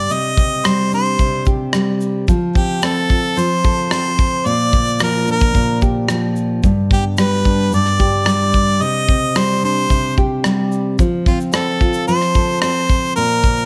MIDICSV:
0, 0, Header, 1, 4, 480
1, 0, Start_track
1, 0, Tempo, 544465
1, 88, Time_signature, 4, 2, 24, 8
1, 12038, End_track
2, 0, Start_track
2, 0, Title_t, "Harmonica"
2, 0, Program_c, 0, 22
2, 0, Note_on_c, 0, 74, 86
2, 102, Note_on_c, 0, 75, 88
2, 116, Note_off_c, 0, 74, 0
2, 584, Note_on_c, 0, 72, 77
2, 597, Note_off_c, 0, 75, 0
2, 817, Note_off_c, 0, 72, 0
2, 831, Note_on_c, 0, 72, 83
2, 1268, Note_off_c, 0, 72, 0
2, 2256, Note_on_c, 0, 67, 64
2, 2500, Note_on_c, 0, 69, 68
2, 2513, Note_off_c, 0, 67, 0
2, 2981, Note_on_c, 0, 72, 78
2, 2994, Note_off_c, 0, 69, 0
2, 3454, Note_off_c, 0, 72, 0
2, 3459, Note_on_c, 0, 72, 80
2, 3935, Note_on_c, 0, 74, 93
2, 3949, Note_off_c, 0, 72, 0
2, 4414, Note_off_c, 0, 74, 0
2, 4435, Note_on_c, 0, 70, 73
2, 4648, Note_off_c, 0, 70, 0
2, 4679, Note_on_c, 0, 70, 84
2, 5113, Note_off_c, 0, 70, 0
2, 6106, Note_on_c, 0, 67, 65
2, 6211, Note_off_c, 0, 67, 0
2, 6348, Note_on_c, 0, 71, 69
2, 6787, Note_off_c, 0, 71, 0
2, 6826, Note_on_c, 0, 74, 78
2, 7266, Note_off_c, 0, 74, 0
2, 7302, Note_on_c, 0, 74, 79
2, 7777, Note_on_c, 0, 75, 94
2, 7791, Note_off_c, 0, 74, 0
2, 8267, Note_on_c, 0, 72, 79
2, 8280, Note_off_c, 0, 75, 0
2, 8499, Note_off_c, 0, 72, 0
2, 8505, Note_on_c, 0, 72, 81
2, 8944, Note_off_c, 0, 72, 0
2, 9937, Note_on_c, 0, 65, 57
2, 10043, Note_off_c, 0, 65, 0
2, 10172, Note_on_c, 0, 69, 73
2, 10617, Note_off_c, 0, 69, 0
2, 10645, Note_on_c, 0, 72, 77
2, 11093, Note_off_c, 0, 72, 0
2, 11116, Note_on_c, 0, 72, 80
2, 11567, Note_off_c, 0, 72, 0
2, 11596, Note_on_c, 0, 70, 90
2, 12038, Note_off_c, 0, 70, 0
2, 12038, End_track
3, 0, Start_track
3, 0, Title_t, "Nylon-string guitar"
3, 0, Program_c, 1, 24
3, 0, Note_on_c, 1, 55, 56
3, 0, Note_on_c, 1, 59, 48
3, 0, Note_on_c, 1, 62, 49
3, 0, Note_on_c, 1, 67, 52
3, 98, Note_on_c, 1, 48, 71
3, 135, Note_off_c, 1, 59, 0
3, 342, Note_on_c, 1, 60, 48
3, 369, Note_off_c, 1, 62, 0
3, 574, Note_off_c, 1, 55, 0
3, 577, Note_on_c, 1, 55, 56
3, 814, Note_on_c, 1, 62, 51
3, 1046, Note_off_c, 1, 48, 0
3, 1057, Note_on_c, 1, 48, 69
3, 1292, Note_off_c, 1, 67, 0
3, 1295, Note_on_c, 1, 67, 53
3, 1525, Note_off_c, 1, 55, 0
3, 1536, Note_on_c, 1, 55, 57
3, 2011, Note_off_c, 1, 55, 0
3, 2015, Note_on_c, 1, 53, 70
3, 2062, Note_off_c, 1, 62, 0
3, 2062, Note_off_c, 1, 67, 0
3, 2063, Note_off_c, 1, 48, 0
3, 2243, Note_off_c, 1, 60, 0
3, 2247, Note_on_c, 1, 60, 48
3, 2483, Note_off_c, 1, 60, 0
3, 2494, Note_on_c, 1, 60, 58
3, 2736, Note_on_c, 1, 65, 52
3, 2971, Note_off_c, 1, 53, 0
3, 2974, Note_on_c, 1, 53, 70
3, 3212, Note_on_c, 1, 69, 55
3, 3444, Note_off_c, 1, 60, 0
3, 3455, Note_on_c, 1, 60, 53
3, 3929, Note_on_c, 1, 46, 68
3, 3981, Note_off_c, 1, 69, 0
3, 3982, Note_off_c, 1, 60, 0
3, 4172, Note_on_c, 1, 58, 48
3, 4415, Note_off_c, 1, 53, 0
3, 4418, Note_on_c, 1, 53, 57
3, 4652, Note_off_c, 1, 65, 0
3, 4656, Note_on_c, 1, 62, 50
3, 4883, Note_off_c, 1, 46, 0
3, 4894, Note_on_c, 1, 46, 71
3, 5130, Note_on_c, 1, 67, 51
3, 5361, Note_off_c, 1, 53, 0
3, 5372, Note_on_c, 1, 53, 55
3, 5849, Note_off_c, 1, 46, 0
3, 5853, Note_on_c, 1, 43, 66
3, 5900, Note_off_c, 1, 53, 0
3, 5901, Note_off_c, 1, 58, 0
3, 6100, Note_on_c, 1, 59, 50
3, 6333, Note_on_c, 1, 55, 59
3, 6568, Note_off_c, 1, 62, 0
3, 6571, Note_on_c, 1, 62, 48
3, 6802, Note_off_c, 1, 43, 0
3, 6812, Note_on_c, 1, 43, 66
3, 7044, Note_off_c, 1, 67, 0
3, 7048, Note_on_c, 1, 67, 56
3, 7279, Note_off_c, 1, 55, 0
3, 7283, Note_on_c, 1, 55, 57
3, 7765, Note_off_c, 1, 43, 0
3, 7769, Note_on_c, 1, 48, 68
3, 7824, Note_off_c, 1, 59, 0
3, 8011, Note_on_c, 1, 60, 49
3, 8038, Note_off_c, 1, 62, 0
3, 8248, Note_off_c, 1, 55, 0
3, 8251, Note_on_c, 1, 55, 59
3, 8492, Note_on_c, 1, 62, 47
3, 8718, Note_off_c, 1, 48, 0
3, 8728, Note_on_c, 1, 48, 66
3, 8972, Note_off_c, 1, 67, 0
3, 8975, Note_on_c, 1, 67, 59
3, 9202, Note_off_c, 1, 55, 0
3, 9213, Note_on_c, 1, 55, 54
3, 9691, Note_off_c, 1, 55, 0
3, 9695, Note_on_c, 1, 53, 70
3, 9737, Note_off_c, 1, 48, 0
3, 9738, Note_off_c, 1, 62, 0
3, 9740, Note_off_c, 1, 67, 0
3, 9934, Note_off_c, 1, 60, 0
3, 9937, Note_on_c, 1, 60, 52
3, 10165, Note_off_c, 1, 60, 0
3, 10176, Note_on_c, 1, 60, 57
3, 10413, Note_on_c, 1, 65, 51
3, 10651, Note_off_c, 1, 53, 0
3, 10655, Note_on_c, 1, 53, 69
3, 10891, Note_on_c, 1, 69, 54
3, 11130, Note_off_c, 1, 60, 0
3, 11140, Note_on_c, 1, 60, 59
3, 11612, Note_on_c, 1, 46, 70
3, 11657, Note_off_c, 1, 69, 0
3, 11661, Note_off_c, 1, 60, 0
3, 11856, Note_on_c, 1, 58, 47
3, 12038, Note_off_c, 1, 46, 0
3, 12038, Note_off_c, 1, 53, 0
3, 12038, Note_off_c, 1, 58, 0
3, 12038, Note_off_c, 1, 65, 0
3, 12038, End_track
4, 0, Start_track
4, 0, Title_t, "Drums"
4, 90, Note_on_c, 9, 82, 54
4, 178, Note_off_c, 9, 82, 0
4, 330, Note_on_c, 9, 36, 77
4, 333, Note_on_c, 9, 82, 42
4, 418, Note_off_c, 9, 36, 0
4, 421, Note_off_c, 9, 82, 0
4, 567, Note_on_c, 9, 82, 69
4, 574, Note_on_c, 9, 37, 106
4, 655, Note_off_c, 9, 82, 0
4, 662, Note_off_c, 9, 37, 0
4, 811, Note_on_c, 9, 82, 36
4, 899, Note_off_c, 9, 82, 0
4, 924, Note_on_c, 9, 82, 45
4, 1012, Note_off_c, 9, 82, 0
4, 1050, Note_on_c, 9, 82, 53
4, 1051, Note_on_c, 9, 36, 65
4, 1138, Note_off_c, 9, 82, 0
4, 1139, Note_off_c, 9, 36, 0
4, 1282, Note_on_c, 9, 82, 39
4, 1293, Note_on_c, 9, 36, 67
4, 1370, Note_off_c, 9, 82, 0
4, 1381, Note_off_c, 9, 36, 0
4, 1525, Note_on_c, 9, 37, 93
4, 1531, Note_on_c, 9, 82, 70
4, 1613, Note_off_c, 9, 37, 0
4, 1619, Note_off_c, 9, 82, 0
4, 1770, Note_on_c, 9, 82, 40
4, 1858, Note_off_c, 9, 82, 0
4, 2012, Note_on_c, 9, 36, 83
4, 2012, Note_on_c, 9, 82, 57
4, 2100, Note_off_c, 9, 36, 0
4, 2100, Note_off_c, 9, 82, 0
4, 2252, Note_on_c, 9, 36, 77
4, 2256, Note_on_c, 9, 82, 38
4, 2340, Note_off_c, 9, 36, 0
4, 2344, Note_off_c, 9, 82, 0
4, 2489, Note_on_c, 9, 82, 76
4, 2496, Note_on_c, 9, 37, 98
4, 2577, Note_off_c, 9, 82, 0
4, 2584, Note_off_c, 9, 37, 0
4, 2730, Note_on_c, 9, 82, 34
4, 2733, Note_on_c, 9, 36, 69
4, 2819, Note_off_c, 9, 82, 0
4, 2821, Note_off_c, 9, 36, 0
4, 2977, Note_on_c, 9, 82, 52
4, 3065, Note_off_c, 9, 82, 0
4, 3209, Note_on_c, 9, 82, 38
4, 3214, Note_on_c, 9, 36, 73
4, 3297, Note_off_c, 9, 82, 0
4, 3302, Note_off_c, 9, 36, 0
4, 3449, Note_on_c, 9, 37, 102
4, 3455, Note_on_c, 9, 82, 70
4, 3537, Note_off_c, 9, 37, 0
4, 3543, Note_off_c, 9, 82, 0
4, 3690, Note_on_c, 9, 82, 37
4, 3692, Note_on_c, 9, 36, 80
4, 3778, Note_off_c, 9, 82, 0
4, 3780, Note_off_c, 9, 36, 0
4, 3929, Note_on_c, 9, 82, 56
4, 4018, Note_off_c, 9, 82, 0
4, 4170, Note_on_c, 9, 36, 75
4, 4173, Note_on_c, 9, 82, 39
4, 4258, Note_off_c, 9, 36, 0
4, 4261, Note_off_c, 9, 82, 0
4, 4294, Note_on_c, 9, 82, 40
4, 4382, Note_off_c, 9, 82, 0
4, 4405, Note_on_c, 9, 82, 69
4, 4412, Note_on_c, 9, 37, 105
4, 4493, Note_off_c, 9, 82, 0
4, 4500, Note_off_c, 9, 37, 0
4, 4648, Note_on_c, 9, 82, 37
4, 4736, Note_off_c, 9, 82, 0
4, 4763, Note_on_c, 9, 82, 46
4, 4773, Note_on_c, 9, 36, 84
4, 4852, Note_off_c, 9, 82, 0
4, 4861, Note_off_c, 9, 36, 0
4, 4891, Note_on_c, 9, 82, 54
4, 4892, Note_on_c, 9, 36, 71
4, 4979, Note_off_c, 9, 82, 0
4, 4980, Note_off_c, 9, 36, 0
4, 5127, Note_on_c, 9, 82, 37
4, 5133, Note_on_c, 9, 36, 68
4, 5215, Note_off_c, 9, 82, 0
4, 5221, Note_off_c, 9, 36, 0
4, 5365, Note_on_c, 9, 37, 96
4, 5371, Note_on_c, 9, 82, 69
4, 5453, Note_off_c, 9, 37, 0
4, 5459, Note_off_c, 9, 82, 0
4, 5609, Note_on_c, 9, 82, 38
4, 5697, Note_off_c, 9, 82, 0
4, 5850, Note_on_c, 9, 36, 77
4, 5850, Note_on_c, 9, 82, 57
4, 5938, Note_off_c, 9, 82, 0
4, 5939, Note_off_c, 9, 36, 0
4, 6090, Note_on_c, 9, 36, 77
4, 6093, Note_on_c, 9, 82, 42
4, 6178, Note_off_c, 9, 36, 0
4, 6181, Note_off_c, 9, 82, 0
4, 6327, Note_on_c, 9, 82, 77
4, 6333, Note_on_c, 9, 37, 100
4, 6415, Note_off_c, 9, 82, 0
4, 6421, Note_off_c, 9, 37, 0
4, 6567, Note_on_c, 9, 82, 35
4, 6571, Note_on_c, 9, 36, 69
4, 6655, Note_off_c, 9, 82, 0
4, 6659, Note_off_c, 9, 36, 0
4, 6809, Note_on_c, 9, 82, 58
4, 6897, Note_off_c, 9, 82, 0
4, 6928, Note_on_c, 9, 37, 31
4, 7016, Note_off_c, 9, 37, 0
4, 7047, Note_on_c, 9, 82, 36
4, 7052, Note_on_c, 9, 36, 72
4, 7135, Note_off_c, 9, 82, 0
4, 7141, Note_off_c, 9, 36, 0
4, 7282, Note_on_c, 9, 37, 96
4, 7288, Note_on_c, 9, 82, 70
4, 7371, Note_off_c, 9, 37, 0
4, 7377, Note_off_c, 9, 82, 0
4, 7525, Note_on_c, 9, 82, 39
4, 7530, Note_on_c, 9, 36, 74
4, 7613, Note_off_c, 9, 82, 0
4, 7618, Note_off_c, 9, 36, 0
4, 7768, Note_on_c, 9, 82, 64
4, 7856, Note_off_c, 9, 82, 0
4, 8010, Note_on_c, 9, 36, 82
4, 8013, Note_on_c, 9, 82, 39
4, 8098, Note_off_c, 9, 36, 0
4, 8102, Note_off_c, 9, 82, 0
4, 8245, Note_on_c, 9, 82, 69
4, 8251, Note_on_c, 9, 37, 102
4, 8333, Note_off_c, 9, 82, 0
4, 8340, Note_off_c, 9, 37, 0
4, 8490, Note_on_c, 9, 82, 36
4, 8578, Note_off_c, 9, 82, 0
4, 8731, Note_on_c, 9, 36, 67
4, 8732, Note_on_c, 9, 82, 57
4, 8819, Note_off_c, 9, 36, 0
4, 8820, Note_off_c, 9, 82, 0
4, 8965, Note_on_c, 9, 82, 39
4, 8972, Note_on_c, 9, 36, 71
4, 9053, Note_off_c, 9, 82, 0
4, 9060, Note_off_c, 9, 36, 0
4, 9205, Note_on_c, 9, 37, 93
4, 9211, Note_on_c, 9, 82, 64
4, 9293, Note_off_c, 9, 37, 0
4, 9299, Note_off_c, 9, 82, 0
4, 9451, Note_on_c, 9, 82, 35
4, 9539, Note_off_c, 9, 82, 0
4, 9687, Note_on_c, 9, 82, 61
4, 9689, Note_on_c, 9, 36, 82
4, 9776, Note_off_c, 9, 82, 0
4, 9777, Note_off_c, 9, 36, 0
4, 9929, Note_on_c, 9, 36, 84
4, 9933, Note_on_c, 9, 82, 39
4, 10017, Note_off_c, 9, 36, 0
4, 10021, Note_off_c, 9, 82, 0
4, 10052, Note_on_c, 9, 82, 41
4, 10141, Note_off_c, 9, 82, 0
4, 10164, Note_on_c, 9, 82, 75
4, 10171, Note_on_c, 9, 37, 103
4, 10253, Note_off_c, 9, 82, 0
4, 10259, Note_off_c, 9, 37, 0
4, 10409, Note_on_c, 9, 82, 33
4, 10410, Note_on_c, 9, 36, 68
4, 10497, Note_off_c, 9, 82, 0
4, 10498, Note_off_c, 9, 36, 0
4, 10521, Note_on_c, 9, 82, 50
4, 10610, Note_off_c, 9, 82, 0
4, 10648, Note_on_c, 9, 82, 55
4, 10736, Note_off_c, 9, 82, 0
4, 10768, Note_on_c, 9, 37, 31
4, 10856, Note_off_c, 9, 37, 0
4, 10879, Note_on_c, 9, 82, 39
4, 10890, Note_on_c, 9, 36, 71
4, 10968, Note_off_c, 9, 82, 0
4, 10978, Note_off_c, 9, 36, 0
4, 11123, Note_on_c, 9, 37, 101
4, 11129, Note_on_c, 9, 82, 73
4, 11212, Note_off_c, 9, 37, 0
4, 11217, Note_off_c, 9, 82, 0
4, 11368, Note_on_c, 9, 82, 36
4, 11369, Note_on_c, 9, 36, 74
4, 11456, Note_off_c, 9, 82, 0
4, 11457, Note_off_c, 9, 36, 0
4, 11604, Note_on_c, 9, 82, 60
4, 11692, Note_off_c, 9, 82, 0
4, 11846, Note_on_c, 9, 36, 74
4, 11849, Note_on_c, 9, 82, 41
4, 11934, Note_off_c, 9, 36, 0
4, 11937, Note_off_c, 9, 82, 0
4, 11968, Note_on_c, 9, 82, 38
4, 12038, Note_off_c, 9, 82, 0
4, 12038, End_track
0, 0, End_of_file